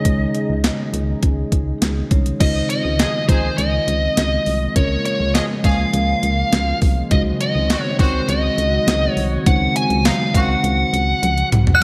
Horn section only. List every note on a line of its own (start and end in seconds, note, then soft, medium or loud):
3.00 3.09 F3 medium
3.00 3.09 D#4 medium
3.00 3.09 G#4 loud
3.29 3.48 F3 medium
3.29 3.48 D#4 medium
3.29 3.48 G#4 medium
5.35 5.44 F3 medium
5.35 5.44 C#4 medium
5.35 5.44 G#4 medium
5.64 5.83 F3 medium
5.64 5.83 C#4 medium
5.64 5.83 G#4 loud
7.70 7.80 D#3 medium
7.70 7.79 C4 medium
7.70 7.79 F#4 loud
7.99 8.18 D#3 medium
7.99 8.18 C4 medium
7.99 8.18 F#4 loud
10.05 10.15 C3 medium
10.05 10.15 G#3 medium
10.05 10.15 D#4 loud
10.35 10.53 D#3 medium
10.35 10.53 C4 loud
10.35 10.54 F#4 loud